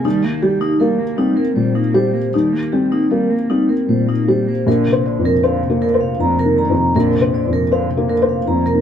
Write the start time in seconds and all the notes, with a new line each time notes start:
0.04 D#2 G3 D#4
0.24 A#3
0.42 G3 G4
0.60 A#3 D#4
0.80 G3 A#3 A#4
0.99 A#3
1.17 G3 C4 D#4
1.36 A#3 A#4
1.56 A#2 G3 C5
1.75 A#3 D#4
1.94 G3 G4 C5
2.14 A#3 C5
2.34 D#2 G3 D#4
2.53 A#3
2.72 G3 C4 G4
2.92 A#3 D#4
3.11 G3 A#3 A#4
3.30 A#3
3.50 G3 C4 D#4
3.69 A#3 A#4
3.88 A#2 G3 C5
4.07 A#3 D#4
4.28 G3 G4 C5
4.48 A#3 C5
4.67 A#1 D3 A#4
4.87 C3
4.92 C5
5.06 D3 D5
5.19 F2
5.25 C3 A#4
5.43 D3 C5 F5
5.63 C3
5.70 A#3
5.81 D3 A#4
5.94 C5
6.00 C3 F5
6.20 F2 D3 A#5
6.38 C3 A#4
6.44 D#2
6.57 D3 A#5
6.70 F2
6.76 C3 A#5
6.95 A#1 D3 A#4
7.15 C3
7.21 C5
7.34 D3 D5
7.47 F2
7.53 C3 A#4
7.72 D3 C5 F5
7.89 C3
7.97 A#3
8.09 D3 A#4
8.22 C5
8.28 C3 F5
8.46 F2 D3 A#5
8.65 C3 A#4
8.73 D#2